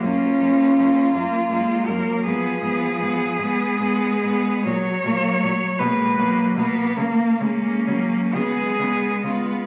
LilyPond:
<<
  \new Staff \with { instrumentName = "Cello" } { \time 6/8 \key fis \major \tempo 4. = 52 eis'2~ eis'8 ais'8 | aes'2. | cis''4. b'4 r8 | r8 cis'4 gis'4 eis'8 | }
  \new Staff \with { instrumentName = "Cello" } { \time 6/8 \key fis \major ais8 ais8 ais8 ais8 ais8 ais8 | ces'8 ces'8 ces'8 ces'8 ces'8 ces'8 | fis8 fis8 fis8 ais8 ais8 ais8 | ais8 ais8 ais8 b8 b8 b8 | }
  \new Staff \with { instrumentName = "Cello" } { \clef bass \time 6/8 \key fis \major cis'4. ais8 gis8 fis8 | f4. aes4. | fis8 ais8 fis8 gis8 fis8 b8 | ais8 gis8 fis8 gis4. | }
  \new Staff \with { instrumentName = "Cello" } { \clef bass \time 6/8 \key fis \major fis,8 fis,8 fis,8 fis,8 fis,8 fis,8 | aes,8 aes,8 aes,8 aes,8 aes,8 aes,8 | ais,8 ais,8 ais,8 b,8 b,8 b,8 | cis8 cis8 cis8 cis8 cis8 cis8 | }
>>